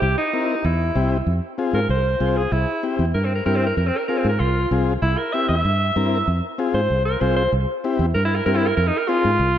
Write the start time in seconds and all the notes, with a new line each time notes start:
0.02 C2 G4
0.18 D#4
0.33 C4 E4 A#4
0.65 E2 E4
0.95 C2 C4 E4 G4
1.27 F2
1.58 C4 F4 G#4
1.73 G#2 A#4
1.89 C2 C5
2.20 C2 C4 F4 G#4
2.37 G#4
2.52 C2 E4
2.83 C4 E4 G4
2.99 E2
3.14 G2 A#4
3.25 C4
3.35 A#4
3.46 G2 C4 E4 G4 A#4
3.56 C4
3.67 A#4
3.77 F2 A#4
3.88 C4
3.98 A#4
4.08 C4 F4 G#4 A#4
4.18 C4
4.25 G#2
4.29 A#4
4.40 C2 F4
4.71 C2 C4 F4 G#4
5.02 C2 E4
5.18 A#4
5.33 C4 E4 G4 E5
5.48 E2 E5
5.65 G2
5.96 G2 C4 E4 A#4
6.28 F2
6.58 C4 F4 G#4
6.74 G#2 C5
6.90 C2
7.05 A#4
7.21 C2 C4 F4 G#4 C5
7.36 C5
7.52 C2
7.84 C4 E4 G4
7.99 E2
8.14 G2 A#4
8.25 E4
8.35 A#4
8.46 G2 C4 E4 G4 A#4
8.56 E4
8.67 A#4
8.77 F2 A#4
8.87 D#4
8.98 A#4
9.08 C4 F4 G#4
9.25 G#2
9.39 C2